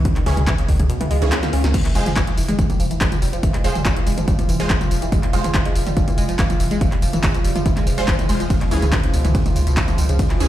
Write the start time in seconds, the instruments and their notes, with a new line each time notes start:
0.05 synth arpeggio sound C#3, kick, closed hi-hat
0.16 synth arpeggio sound D#3, clap, closed hi-hat
0.26 sub bass C#2, synth arpeggio sound C#3, synth stab E3 C#4 G#4, open hi-hat, mid tom
0.37 sub bass C#2, synth arpeggio sound B2, closed hi-hat, mid tom
0.47 synth arpeggio sound E3, kick, clap, closed hi-hat
0.58 synth arpeggio sound C#3, closed hi-hat
0.69 sub bass C#2, synth arpeggio sound D#3, kick, open hi-hat
0.80 sub bass C#2, synth arpeggio sound C#3, closed hi-hat, mid tom
0.90 synth arpeggio sound B2, closed hi-hat, swell
1.01 synth arpeggio sound E3, closed hi-hat, mid tom
1.11 sub bass C#2, synth arpeggio sound G#3, open hi-hat
1.22 sub bass C#2, synth arpeggio sound D#3, synth stab E3 C#4 G#4, closed hi-hat
1.32 synth arpeggio sound C#4, snare, clap, closed hi-hat
1.43 synth arpeggio sound A#3, snare, closed hi-hat, mid tom
1.53 sub bass C#2, synth arpeggio sound C#4, open hi-hat
1.64 sub bass C#2, synth arpeggio sound D#3, snare, closed hi-hat
1.74 synth arpeggio sound F3, synth drone F3 F4, kick, closed hi-hat, crash, tambourine
1.85 synth arpeggio sound E3, clap, closed hi-hat
1.95 sub bass F1, synth arpeggio sound G#3, synth stab G#3 F4 C5, open hi-hat, tambourine
2.06 sub bass F1, synth arpeggio sound F3, closed hi-hat, mid tom, tambourine
2.16 synth arpeggio sound G3, kick, clap, closed hi-hat, tambourine
2.27 synth arpeggio sound F3, closed hi-hat
2.38 sub bass F1, synth arpeggio sound E3, open hi-hat, tambourine
2.49 sub bass F1, synth arpeggio sound G#3, closed hi-hat, mid tom, tambourine
2.59 synth arpeggio sound F3, kick, closed hi-hat, tambourine
2.70 synth arpeggio sound G3, closed hi-hat, mid tom, tambourine
2.80 sub bass F1, synth arpeggio sound F3, open hi-hat, tambourine
2.91 sub bass F1, synth arpeggio sound E3, closed hi-hat, tambourine
3.01 synth arpeggio sound G#3, kick, clap, closed hi-hat, tambourine
3.12 synth arpeggio sound F3, closed hi-hat, mid tom, tambourine
3.22 sub bass F1, synth arpeggio sound G3, open hi-hat, tambourine
3.33 sub bass F1, synth arpeggio sound F3, closed hi-hat, tambourine
3.43 synth arpeggio sound E3, kick, closed hi-hat, tambourine
3.54 synth arpeggio sound G#3, clap, closed hi-hat
3.64 sub bass F1, synth arpeggio sound F3, synth stab G#3 F4 C5, open hi-hat, tambourine
3.75 sub bass F1, synth arpeggio sound G3, closed hi-hat, mid tom, tambourine
3.85 synth arpeggio sound F3, kick, clap, closed hi-hat, tambourine
3.96 synth arpeggio sound E3, closed hi-hat
4.07 sub bass F1, synth arpeggio sound G#3, open hi-hat, tambourine
4.18 sub bass F1, synth arpeggio sound F3, closed hi-hat, mid tom, tambourine
4.28 synth arpeggio sound G3, kick, closed hi-hat, tambourine
4.39 synth arpeggio sound F3, closed hi-hat, mid tom, tambourine
4.49 sub bass F1, synth arpeggio sound E3, open hi-hat, tambourine
4.60 sub bass F1, synth stab G#3 F4 C5, synth arpeggio sound G#3, closed hi-hat, tambourine
4.70 synth arpeggio sound F3, kick, clap, closed hi-hat, tambourine
4.81 synth arpeggio sound G3, closed hi-hat, mid tom, tambourine
4.91 sub bass F1, synth arpeggio sound F3, open hi-hat, tambourine
5.02 sub bass F1, synth arpeggio sound E3, closed hi-hat, tambourine
5.12 synth arpeggio sound G#3, kick, closed hi-hat, tambourine
5.23 synth arpeggio sound F3, clap, closed hi-hat
5.33 sub bass F1, synth arpeggio sound G3, synth stab G#3 F4 C5, open hi-hat, tambourine
5.44 sub bass F1, synth arpeggio sound F3, closed hi-hat, mid tom, tambourine
5.54 synth arpeggio sound E3, kick, clap, closed hi-hat, tambourine
5.65 synth arpeggio sound G#3, closed hi-hat
5.76 sub bass F1, synth arpeggio sound F3, open hi-hat, tambourine
5.87 sub bass F1, synth arpeggio sound G3, closed hi-hat, mid tom, tambourine
5.97 synth arpeggio sound F3, kick, closed hi-hat, tambourine
6.08 synth arpeggio sound E3, closed hi-hat, mid tom, tambourine
6.18 sub bass F1, synth arpeggio sound G#3, open hi-hat, tambourine
6.29 sub bass F1, synth arpeggio sound F3, closed hi-hat, tambourine
6.39 synth arpeggio sound G3, kick, clap, closed hi-hat, tambourine
6.50 synth arpeggio sound F3, closed hi-hat, mid tom, tambourine
6.60 sub bass F1, synth arpeggio sound E3, open hi-hat, tambourine
6.71 sub bass F1, synth arpeggio sound G#3, closed hi-hat, tambourine
6.81 synth arpeggio sound F3, kick, closed hi-hat, tambourine
6.92 synth arpeggio sound G3, clap, closed hi-hat
7.02 sub bass F1, synth arpeggio sound F3, open hi-hat, tambourine
7.13 sub bass F1, synth arpeggio sound E3, closed hi-hat, mid tom, tambourine
7.23 synth arpeggio sound G#3, kick, clap, closed hi-hat, tambourine
7.34 synth arpeggio sound F3, closed hi-hat, tambourine
7.44 sub bass F1, synth arpeggio sound G3, open hi-hat, tambourine
7.56 sub bass F1, synth arpeggio sound F3, closed hi-hat, mid tom, tambourine
7.66 synth arpeggio sound E3, kick, closed hi-hat, tambourine
7.77 synth arpeggio sound G#3, clap, closed hi-hat, mid tom, tambourine
7.87 sub bass F1, synth arpeggio sound F3, open hi-hat, tambourine
7.98 sub bass F1, synth arpeggio sound G3, synth stab G#3 F4 C5, closed hi-hat, tambourine
8.08 synth arpeggio sound F3, kick, clap, closed hi-hat, tambourine
8.19 synth arpeggio sound E3, closed hi-hat, mid tom, tambourine
8.29 sub bass F1, synth arpeggio sound G#3, synth stab G#3 F4 C5, open hi-hat, tambourine
8.40 sub bass F1, synth arpeggio sound F3, closed hi-hat, tambourine
8.50 synth arpeggio sound C#3, kick, closed hi-hat, ride, tambourine
8.61 synth arpeggio sound B2, clap, closed hi-hat
8.71 sub bass C#2, synth arpeggio sound E3, synth stab E3 C#4 G#4, open hi-hat, tambourine
8.82 sub bass C#2, synth arpeggio sound C#3, closed hi-hat, mid tom, tambourine
8.92 synth arpeggio sound D#3, kick, clap, closed hi-hat, ride, tambourine
9.03 synth arpeggio sound C#3, closed hi-hat
9.13 sub bass C#2, synth arpeggio sound B2, open hi-hat, tambourine
9.25 sub bass C#2, synth arpeggio sound E3, closed hi-hat, mid tom, tambourine
9.35 synth arpeggio sound C#3, kick, closed hi-hat, ride, tambourine
9.46 synth arpeggio sound D#3, closed hi-hat, mid tom, tambourine
9.56 sub bass C#2, synth arpeggio sound C#3, open hi-hat, tambourine
9.67 sub bass C#2, synth arpeggio sound B2, closed hi-hat, tambourine
9.77 synth arpeggio sound E3, kick, clap, closed hi-hat, ride, tambourine
9.88 synth arpeggio sound C#3, closed hi-hat, mid tom, tambourine
9.98 sub bass C#2, synth arpeggio sound D#3, open hi-hat, tambourine
10.09 sub bass C#2, synth arpeggio sound C#3, closed hi-hat, tambourine
10.19 synth arpeggio sound B2, kick, closed hi-hat, ride, tambourine
10.30 synth arpeggio sound E3, clap, closed hi-hat
10.40 sub bass C#2, synth arpeggio sound C#3, synth stab E3 C#4 G#4, open hi-hat, tambourine